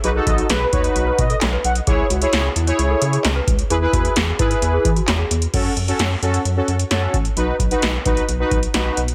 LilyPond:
<<
  \new Staff \with { instrumentName = "Analog polysynth" } { \time 4/4 \key fis \dorian \tempo 4 = 131 r8 dis''16 r16 b'8 cis''16 r8. dis''8 r8 fis''16 r16 | r1 | r1 | r1 |
r1 | }
  \new Staff \with { instrumentName = "Celesta" } { \time 4/4 \key fis \dorian gis'8 fis'8 gis'8 fis'16 cis''8 b'8 a'8 b'8 r16 | gis'8 fis'8 gis'8 e'16 cis''8 a'8 gis'8 b'8 r16 | gis'8 fis'8 gis'8 e'16 b'8 gis'8 fis'8 gis'8 r16 | r1 |
r1 | }
  \new Staff \with { instrumentName = "Analog polysynth" } { \time 4/4 \key fis \dorian <dis' fis' b'>16 <dis' fis' a'>8. r8 <dis' fis' b'>4 r4. | <e' gis' cis''>8 r16 <e' gis' cis''>8 r8 <e' gis' cis''>4 r4 r16 | <e' gis' b'>16 <e' gis' b'>8. r8 <e' gis' b'>4 r4. | <cis' fis' a'>8 r16 <cis' fis' a'>8 r16 <cis' fis' a'>8 r16 <cis' fis' a'>8 r16 <cis' fis' a'>8 r8 |
<dis' fis' b'>8 r16 <dis' fis' b'>8 r16 <dis' fis' b'>8 r16 <dis' fis' b'>8 r16 <dis' fis' b'>8 r8 | }
  \new Staff \with { instrumentName = "Analog synth bass" } { \clef bass \time 4/4 \key fis \dorian b,,8 b,,8 b,,8 dis,8 b,,8 b,8 b,,8 b,,8 | cis,8 cis,8 cis,8 e,8 cis,8 cis8 cis,8 cis,8 | e,8 e,8 e,8 gis,8 e,8 e8 e,8 e,8 | fis,8 fis,8 fis,8 fis,8 fis,8 fis,8 fis,8 a,,8 |
b,,8 b,,8 b,,8 b,,8 b,,8 b,,8 b,,8 b,,8 | }
  \new DrumStaff \with { instrumentName = "Drums" } \drummode { \time 4/4 hh8 <hh bd>16 hh16 <hh sn>8 <hh bd>16 hh16 hh8 <hh bd>16 hh16 <hc hh sn>8 hh16 hh16 | <hh bd>8 hh16 hh16 <hh sn>8 hh16 hh16 hh8 hh16 hh16 <hc hh sn>8 <hh bd>16 hh16 | hh8 <hh bd>16 hh16 <hh sn>8 <hh bd>16 hh16 hh8 <hh bd>16 hh16 <hc hh sn>8 hh16 hh16 | <cymc hh bd>8 hh16 hh16 <hh sn>8 hh16 hh16 hh8 hh16 hh16 <hh sn>8 <hh bd>16 hh16 |
hh8 <hh bd>16 hh16 <hh sn>8 <hh bd>16 hh16 hh8 <hh bd>16 hh16 <hh sn>8 hh16 hh16 | }
>>